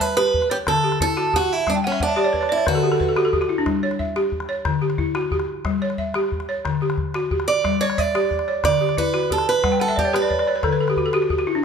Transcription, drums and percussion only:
0.00 calabash thump
0.17 calabash click
0.34 calabash thump
0.42 calabash click
0.51 calabash click
0.67 calabash thump, calabash click
0.92 calabash click
1.00 calabash thump
1.17 calabash click
1.34 calabash thump
1.42 calabash click
1.67 calabash thump, calabash click
1.92 calabash click
2.00 calabash thump
2.17 calabash click
2.34 calabash thump
2.43 calabash click
2.51 calabash click
2.67 calabash thump, calabash click
2.92 calabash click
3.00 calabash thump
3.16 calabash click
3.33 calabash thump
3.42 calabash click
3.66 calabash thump, calabash click
3.91 calabash click
4.00 calabash thump
4.16 calabash click
4.32 calabash thump
4.40 calabash click
4.48 calabash click
4.65 calabash thump, calabash click
4.90 calabash click
4.98 calabash thump
5.15 calabash click
5.31 calabash thump
5.40 calabash click
5.65 calabash thump, calabash click
5.74 calabash click
5.82 calabash click
5.90 calabash click
5.98 calabash thump
6.14 calabash click
6.24 calabash click
6.32 calabash thump
6.40 calabash click
6.65 calabash thump, calabash click
6.90 calabash click
6.98 calabash thump
7.14 calabash click
7.31 calabash thump, calabash click
7.40 calabash click
7.65 calabash thump, calabash click
7.90 calabash click
7.98 calabash thump
8.15 calabash click
8.31 calabash thump
8.39 calabash click
8.48 calabash click
8.64 calabash thump, calabash click
8.89 calabash click
8.97 calabash thump
9.14 calabash click
9.31 calabash thump
9.38 calabash click
9.64 calabash thump, calabash click
9.89 calabash click
9.98 calabash thump
10.14 calabash click
10.30 calabash thump
10.39 calabash click
10.47 calabash click
10.63 calabash thump, calabash click
10.88 calabash click
10.97 calabash thump
11.13 calabash click
11.30 calabash thump
11.38 calabash click

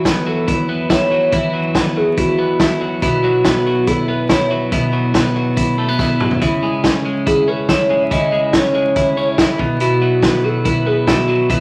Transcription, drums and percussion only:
0.05 kick, snare, closed hi-hat
0.48 kick, closed hi-hat
0.90 kick, snare, closed hi-hat
1.32 kick, closed hi-hat
1.75 kick, snare, closed hi-hat
2.17 kick, closed hi-hat
2.60 kick, snare, closed hi-hat
3.02 kick, closed hi-hat
3.44 kick, snare, closed hi-hat
3.87 kick, closed hi-hat
4.29 kick, snare, closed hi-hat
4.72 kick, closed hi-hat
5.14 kick, snare, closed hi-hat
5.57 kick, closed hi-hat
5.99 kick, snare
6.20 mid tom
6.31 floor tom
6.42 kick, closed hi-hat
6.84 kick, snare, closed hi-hat
7.27 kick, closed hi-hat
7.69 kick, snare, closed hi-hat
8.11 kick, closed hi-hat
8.53 kick, snare, closed hi-hat
8.96 kick, closed hi-hat
9.38 kick, snare, closed hi-hat
9.59 kick
9.80 closed hi-hat
10.23 kick, snare, closed hi-hat
10.65 kick, closed hi-hat
11.07 kick, snare, closed hi-hat
11.50 kick, closed hi-hat

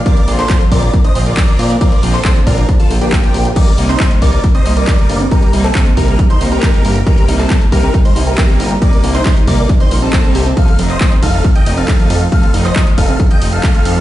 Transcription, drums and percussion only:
0.06 kick, closed hi-hat
0.17 closed hi-hat
0.28 open hi-hat
0.39 clap, closed hi-hat
0.50 kick, clap, closed hi-hat
0.61 closed hi-hat
0.72 kick, open hi-hat
0.83 closed hi-hat
0.93 kick, closed hi-hat
1.04 closed hi-hat
1.15 open hi-hat
1.26 closed hi-hat
1.37 kick, clap, closed hi-hat
1.48 closed hi-hat
1.59 open hi-hat
1.70 closed hi-hat
1.81 kick, closed hi-hat
1.92 closed hi-hat
2.03 open hi-hat
2.14 clap, closed hi-hat
2.25 kick, clap, closed hi-hat
2.36 closed hi-hat
2.47 kick, open hi-hat
2.58 closed hi-hat
2.69 kick, closed hi-hat
2.80 closed hi-hat
2.91 open hi-hat
3.02 closed hi-hat
3.12 kick, clap, closed hi-hat
3.23 closed hi-hat
3.34 open hi-hat
3.45 closed hi-hat
3.56 kick, closed hi-hat, crash
3.67 closed hi-hat
3.78 open hi-hat
3.89 clap, closed hi-hat
4.00 kick, clap, closed hi-hat
4.11 closed hi-hat
4.22 kick, open hi-hat
4.33 closed hi-hat
4.44 kick, closed hi-hat
4.55 closed hi-hat
4.66 open hi-hat
4.77 closed hi-hat
4.88 kick, clap, closed hi-hat
4.99 closed hi-hat
5.09 open hi-hat
5.20 closed hi-hat
5.31 kick, closed hi-hat
5.42 closed hi-hat
5.53 open hi-hat
5.64 clap, closed hi-hat
5.75 kick, clap, closed hi-hat
5.86 closed hi-hat
5.97 kick, open hi-hat
6.08 closed hi-hat
6.19 kick, closed hi-hat
6.30 closed hi-hat
6.41 open hi-hat
6.52 closed hi-hat
6.63 kick, clap, closed hi-hat
6.74 closed hi-hat
6.85 open hi-hat
6.96 closed hi-hat
7.07 kick, closed hi-hat
7.18 closed hi-hat
7.29 open hi-hat
7.39 clap, closed hi-hat
7.50 kick, clap, closed hi-hat
7.61 closed hi-hat
7.72 kick, open hi-hat
7.83 closed hi-hat
7.94 kick, closed hi-hat
8.05 closed hi-hat
8.16 open hi-hat
8.27 closed hi-hat
8.38 kick, clap, closed hi-hat
8.49 closed hi-hat
8.60 open hi-hat
8.71 closed hi-hat
8.82 kick, closed hi-hat
8.93 closed hi-hat
9.04 open hi-hat
9.15 clap, closed hi-hat
9.26 kick, clap, closed hi-hat
9.37 closed hi-hat
9.47 kick, open hi-hat
9.58 closed hi-hat
9.69 kick, closed hi-hat
9.80 closed hi-hat
9.91 open hi-hat
10.02 closed hi-hat
10.13 kick, clap, closed hi-hat
10.24 closed hi-hat
10.35 open hi-hat
10.46 closed hi-hat
10.57 kick, closed hi-hat
10.68 closed hi-hat
10.79 open hi-hat, ride
10.90 clap, closed hi-hat
11.01 kick, clap, closed hi-hat
11.12 closed hi-hat
11.23 kick, open hi-hat, ride
11.34 closed hi-hat
11.45 kick, closed hi-hat
11.55 closed hi-hat
11.66 open hi-hat, ride
11.77 closed hi-hat
11.88 kick, clap, closed hi-hat
11.99 closed hi-hat
12.10 open hi-hat, ride
12.21 closed hi-hat
12.32 kick, closed hi-hat
12.43 closed hi-hat
12.54 open hi-hat, ride
12.65 clap, closed hi-hat
12.76 kick, clap, closed hi-hat
12.87 closed hi-hat
12.98 kick, open hi-hat, ride
13.09 closed hi-hat
13.20 kick, closed hi-hat
13.31 closed hi-hat
13.42 open hi-hat, ride
13.53 closed hi-hat
13.63 kick, clap, closed hi-hat
13.74 closed hi-hat
13.85 open hi-hat, ride
13.96 closed hi-hat

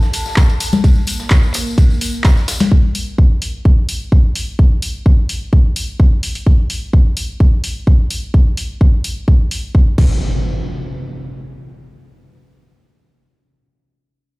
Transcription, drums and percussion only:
0.02 snare, tambourine
0.13 open hi-hat, ride, tambourine
0.26 snare, tambourine
0.36 kick, snare, clap, ride, tambourine
0.49 ride, tambourine
0.60 open hi-hat, ride, tambourine
0.73 snare, tambourine, high conga
0.84 kick, ride, tambourine
0.95 tambourine
1.07 open hi-hat, ride, tambourine
1.20 snare, tambourine
1.30 kick, snare, clap, ride, tambourine
1.43 tambourine
1.54 clap, open hi-hat, ride, tambourine
1.67 tambourine
1.78 kick, ride, tambourine
1.90 tambourine
2.01 open hi-hat, ride, tambourine
2.14 tambourine
2.24 kick, snare, clap, ride, tambourine
2.37 snare, tambourine
2.48 snare, open hi-hat, ride, tambourine
2.60 snare, open hi-hat, ride, tambourine, high conga
2.72 kick
2.95 open hi-hat
3.18 kick
3.42 open hi-hat
3.65 kick
3.89 open hi-hat
4.12 kick
4.35 open hi-hat
4.59 kick
4.82 open hi-hat
5.06 kick
5.29 open hi-hat
5.53 kick
5.76 open hi-hat
6.00 kick
6.23 open hi-hat
6.35 open hi-hat
6.47 kick
6.70 open hi-hat
6.93 kick
7.17 open hi-hat
7.40 kick
7.64 open hi-hat
7.87 kick
8.11 open hi-hat
8.34 kick
8.57 open hi-hat
8.81 kick
9.04 open hi-hat
9.28 kick
9.51 open hi-hat
9.75 kick
9.98 kick, crash

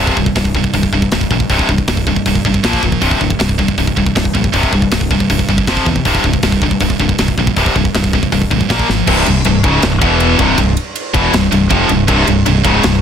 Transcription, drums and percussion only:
0.07 kick
0.17 kick
0.26 kick
0.36 kick, snare, open hi-hat
0.45 kick
0.55 kick
0.64 kick
0.73 kick, open hi-hat
0.83 kick
0.93 kick
1.02 kick
1.11 kick, snare, open hi-hat
1.21 kick
1.31 kick
1.40 kick
1.49 kick, open hi-hat
1.59 kick
1.69 kick
1.78 kick
1.88 kick, snare, open hi-hat
1.97 kick
2.07 kick
2.16 kick
2.26 kick, open hi-hat
2.35 kick
2.45 kick
2.54 kick
2.64 kick, snare, open hi-hat
2.73 kick
2.83 kick
2.92 kick
3.02 kick, open hi-hat
3.11 kick
3.21 kick
3.30 kick
3.40 kick, snare, open hi-hat
3.49 kick
3.59 kick
3.68 kick
3.78 kick, open hi-hat
3.87 kick
3.97 kick
4.06 kick
4.16 kick, snare, open hi-hat
4.25 kick
4.35 kick
4.44 kick
4.53 kick, open hi-hat
4.63 kick
4.73 kick
4.82 kick
4.92 kick, snare, open hi-hat
5.01 kick
5.11 kick
5.20 kick
5.30 kick, open hi-hat
5.39 kick
5.49 kick
5.58 kick
5.67 kick, snare, open hi-hat
5.77 kick
5.86 kick
5.96 kick
6.05 kick, open hi-hat
6.15 kick
6.24 kick
6.33 kick
6.43 kick, snare, open hi-hat
6.52 kick
6.62 kick
6.71 kick
6.80 kick, open hi-hat
6.90 kick
7.00 kick
7.09 kick
7.18 kick, snare, open hi-hat
7.28 kick
7.38 kick
7.47 kick
7.56 kick, open hi-hat
7.66 kick
7.76 kick
7.85 kick
7.95 kick, snare, open hi-hat
8.04 kick
8.13 kick
8.23 kick
8.32 kick, open hi-hat
8.42 kick
8.51 kick
8.61 kick
8.70 kick, snare, open hi-hat
8.79 kick
8.89 snare
9.07 kick, crash
9.26 ride
9.45 ride
9.64 kick, ride
9.82 snare, ride
10.02 kick, ride
10.20 ride
10.39 kick, ride
10.58 kick, ride
10.77 ride
10.96 ride
11.14 kick, ride
11.34 snare, ride
11.52 ride
11.70 kick, ride
11.89 ride
12.08 kick, ride
12.27 ride
12.46 ride
12.65 kick, ride
12.83 snare, ride

